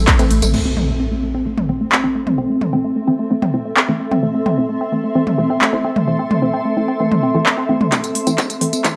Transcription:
Already playing: ambient pad C4 A4 E5 E6
0.08 synth arpeggio sound B3, kick, clap, closed hi-hat, ride, tambourine
0.19 synth stab E3 A3 C4, synth arpeggio sound A4, closed hi-hat, ride, tambourine
0.31 sub bass A1, synth arpeggio sound A3, open hi-hat, ride
0.42 sub bass A1, synth arpeggio sound A4, closed hi-hat, mid tom, ride, tambourine
0.53 synth stab E3 A3 C4, synth arpeggio sound A3, ambient pad C4, crash, impact
0.65 synth arpeggio sound C4
0.77 synth arpeggio sound A3, mid tom
0.88 synth stab E3 A3 C4, synth arpeggio sound A3
1.00 synth arpeggio sound C4
1.10 synth arpeggio sound A3, ambient pad A4
1.23 synth stab E3 A3 C4, synth arpeggio sound A3
1.35 synth arpeggio sound C4
1.46 synth stab E3 A3 C4, synth arpeggio sound A3
1.58 synth arpeggio sound A3, mid tom
1.63 ambient pad E5
1.69 synth stab E3 A3 C4, synth arpeggio sound C4
1.81 synth arpeggio sound A3
1.92 synth arpeggio sound A3, clap
2.04 synth stab E3 A3 C4, synth arpeggio sound C4
2.15 synth arpeggio sound A3
2.27 synth arpeggio sound A3, mid tom
2.38 synth stab E3 A3 C4, synth arpeggio sound C4
2.50 synth arpeggio sound A3
2.61 synth arpeggio sound A3, ambient pad C6, mid tom
2.73 synth stab E3 A3 C4, synth arpeggio sound C4
2.84 synth arpeggio sound A3
2.96 synth arpeggio sound A3
3.07 synth stab E3 A3 C4, synth arpeggio sound C4
3.19 synth arpeggio sound A3
3.30 synth stab E3 A3 C4, synth arpeggio sound A3
3.42 synth arpeggio sound C4, mid tom
3.54 synth stab E3 A3 C4, synth arpeggio sound A3
3.65 synth arpeggio sound A3
3.77 synth arpeggio sound C4, clap
3.88 synth stab E3 A3 C4, synth arpeggio sound A3
4.00 synth arpeggio sound A3
4.11 synth arpeggio sound C4, mid tom
4.23 synth stab E3 A3 C4, synth arpeggio sound A3
4.35 synth arpeggio sound A3
4.46 synth arpeggio sound C4, mid tom
4.58 synth stab E3 A3 C4, synth arpeggio sound A3
4.69 synth arpeggio sound A3
4.81 synth arpeggio sound C4
4.92 synth stab E3 A3 C4, synth arpeggio sound A3
5.04 synth arpeggio sound A3
5.15 synth stab E3 A3 C4, synth arpeggio sound C4
5.27 synth arpeggio sound A3, mid tom
5.38 synth stab E3 A3 C4, synth arpeggio sound A3
5.50 synth arpeggio sound C4
5.61 synth arpeggio sound A3, clap
5.73 synth stab E3 A3 C4, synth arpeggio sound A3
5.84 synth arpeggio sound C4
5.96 synth arpeggio sound A3, mid tom
6.08 synth stab E3 A3 C4, synth arpeggio sound A3
6.19 synth arpeggio sound C4
6.31 synth arpeggio sound A3, mid tom
6.42 synth stab E3 A3 C4, synth arpeggio sound A3
6.54 synth arpeggio sound C4
6.65 synth arpeggio sound A3
6.77 synth stab E3 A3 C4, synth arpeggio sound A3
6.88 synth arpeggio sound C4
7.00 synth stab E3 A3 C4, synth arpeggio sound A3
7.11 synth arpeggio sound A3, mid tom
7.23 synth arpeggio sound C4
7.35 synth stab E3 A3 C4, synth arpeggio sound A3
7.46 synth arpeggio sound A3, clap
7.58 synth arpeggio sound C4
7.69 synth stab E3 A3 C4, synth arpeggio sound A3
7.81 synth arpeggio sound A3, mid tom
7.92 synth stab E3 A3 C4, synth arpeggio sound A3, kick, clap, closed hi-hat, tambourine
8.04 synth arpeggio sound C4, closed hi-hat, tambourine
8.15 synth arpeggio sound A3, open hi-hat
8.27 synth stab E3 A3 C4, synth arpeggio sound A3, closed hi-hat, tambourine
8.38 synth arpeggio sound C4, kick, clap, closed hi-hat, tambourine
8.50 synth arpeggio sound A3, closed hi-hat, tambourine
8.61 synth stab E3 A3 C4, synth arpeggio sound A3, open hi-hat
8.73 synth arpeggio sound C4, closed hi-hat, tambourine
8.84 synth stab E3 A3 C4, synth arpeggio sound A3, kick, clap, closed hi-hat, tambourine

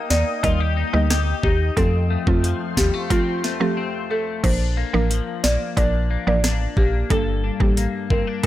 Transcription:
Already playing: ambient pad A#3 D#5 G5 D#6, clean electric guitar A#3 G4
0.10 fm bass D#2, clean electric guitar D#4, marimba D5, snare
0.43 fm bass D#2, synth pluck G3 A#3 D#4 A#4, clean electric guitar F4, marimba D#5, kick, closed hi-hat
0.60 clean electric guitar G4
0.77 clean electric guitar D#4
0.93 fm bass D2, synth pluck G3 A#3 D#4 A#4, marimba D#5
1.10 clean electric guitar G4, cross-stick, snare, closed hi-hat
1.43 fm bass D#2, clean electric guitar D#4, marimba G4, kick
1.77 clean electric guitar F2 C4, fm bass F2, synth pluck F3 A3 C4 A4, marimba A4, ambient pad A4 C5 F5 C6, kick, closed hi-hat
2.10 clean electric guitar A3
2.27 fm bass F2, synth pluck F3 A3 C4 A4, marimba F4, kick
2.44 clean electric guitar F3, closed hi-hat
2.77 fm bass D#2, clean electric guitar G3, marimba G4, kick, snare
2.94 clean electric guitar A3
3.10 synth pluck F3 A3 C4 A4, clean electric guitar C4, marimba F4, kick, closed hi-hat
3.44 clean electric guitar A3, snare
3.60 synth pluck F3 A3 C4 A4, marimba G4
3.77 clean electric guitar C4
4.10 clean electric guitar A3, marimba A4
4.43 fm bass A#1, synth pluck F3 A#3 D4 A#4, clean electric guitar D4, marimba C5, kick, closed hi-hat, crash
4.77 clean electric guitar A#3
4.93 fm bass A1, synth pluck F3 A#3 D4 A#4, marimba A#4
5.10 clean electric guitar F3, closed hi-hat
5.44 fm bass A#1, clean electric guitar A#3, marimba D5, snare
5.77 fm bass A#1, synth pluck F3 A#3 D4 A#4, clean electric guitar D4, marimba D5, kick, closed hi-hat
6.10 clean electric guitar A#3
6.27 fm bass A1, synth pluck F3 A#3 D4 A#4, marimba D5
6.44 clean electric guitar D4, cross-stick, snare, closed hi-hat
6.77 fm bass A#1, clean electric guitar A#3, marimba G4, kick
7.10 fm bass G1, clean electric guitar G2 A4, synth pluck G3 A#3 D4 A4, marimba A4, kick, closed hi-hat
7.44 clean electric guitar D4
7.60 fm bass A1, synth pluck G3 A#3 D4 A4, marimba G4, kick
7.77 clean electric guitar A#3, closed hi-hat
8.10 fm bass G1, clean electric guitar C4, marimba A#4, kick
8.27 clean electric guitar D4
8.43 synth pluck G3

